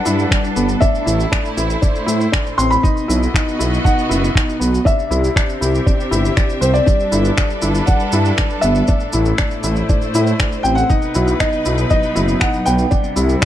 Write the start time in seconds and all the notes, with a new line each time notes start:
Already playing: G3 D4 A4 B4 F#5
0.06 G2 E4, shaker
0.19 shaker
0.31 D4, finger snap, kick, shaker
0.44 shaker
0.56 G1 B3, shaker
0.69 shaker
0.80 A2 D4 E5, kick, shaker
0.90 A3
0.95 E4, shaker
1.06 A1 E4, shaker
1.20 shaker
1.32 D4, finger snap, kick, shaker
1.45 shaker
1.55 A1 E4 C5, shaker
1.70 shaker
1.82 D4, kick, shaker
1.96 shaker
2.07 A2 E4, shaker
2.21 shaker
2.32 D4, finger snap, kick, shaker
2.47 shaker
2.58 A1 C4 C6, shaker
2.71 B5, shaker
2.83 B2 D#4, kick, shaker
2.97 shaker
3.02 B3 D#5
3.08 B1 E4, shaker
3.23 F#4, shaker
3.34 D#4, finger snap, kick, shaker
3.48 shaker
3.59 B1 E4, shaker
3.74 shaker
3.84 D#4 F#5, kick, shaker
3.99 shaker
4.09 F#1 E4, shaker
4.24 shaker
4.35 D#4, finger snap, kick, shaker
4.49 shaker
4.60 B1 B3, shaker
4.75 shaker
4.85 C3 D4 E5, kick, shaker
4.99 C4, shaker
5.11 C2 E4, shaker
5.19 G4
5.24 shaker
5.36 D4, finger snap, kick, shaker
5.49 shaker
5.56 E5
5.61 C2 E4, shaker
5.75 shaker
5.86 D4, kick, shaker
6.00 shaker
6.11 G1 E4, shaker
6.25 shaker
6.37 D4, finger snap, kick, shaker
6.50 shaker
6.61 C2 C4 C5, shaker
6.74 D5, shaker
6.86 G3 D4, kick, shaker
7.00 D4 A4, shaker
7.12 G1 E4, shaker
7.25 shaker
7.37 D4, finger snap, kick, shaker
7.50 B4, shaker
7.62 G1 E4, shaker
7.75 shaker
7.86 D4 F#5, kick, shaker
8.00 shaker
8.12 G2 E4, shaker
8.25 shaker
8.38 D4, finger snap, kick, shaker
8.50 shaker
8.61 G1 B3 E5, shaker
8.75 shaker
8.88 A2 D4, kick, shaker
9.00 E4, shaker
9.08 A3
9.13 A1 E4, shaker
9.26 shaker
9.38 D4, finger snap, kick, shaker
9.51 C5, shaker
9.63 A1 E4, shaker
9.76 shaker
9.89 D4, kick, shaker
10.02 shaker
10.14 A2 E4, shaker
10.27 shaker
10.39 D4, finger snap, kick, shaker
10.52 shaker
10.63 A1 C4 G5, shaker
10.75 F#5, shaker
10.89 B2 D#4, kick, shaker
10.96 D#4 B4
11.02 shaker
11.12 B1 F#3 E4, shaker
11.28 shaker
11.40 D#4 D#5, finger snap, kick, shaker
11.52 shaker
11.65 B1 E4, shaker
11.78 shaker
11.90 D#4 D#5, kick, shaker
12.03 shaker
12.16 F#1 E4, shaker
12.28 shaker
12.40 D#4 F#5, finger snap, kick, shaker
12.54 shaker
12.65 B1 B3 G5, shaker
12.78 shaker
12.91 C3 D4, kick, shaker
12.98 G3
13.04 shaker
13.16 C2 E4, shaker
13.29 E4, shaker
13.42 D4